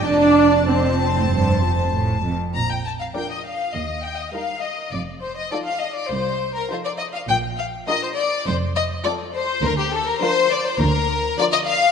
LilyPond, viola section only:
\new Staff \with { instrumentName = "Viola section" } { \time 4/4 \key bes \major \tempo 4 = 101 d'4 c'2 r4 | r4 <f d'>4 r4 <g ees'>4 | r4 <f ees'>4 r4 <f ees'>4 | r4 <f d'>4 r4 <f c'>4 |
r4 <f d'>4 r4 <f d'>4 | }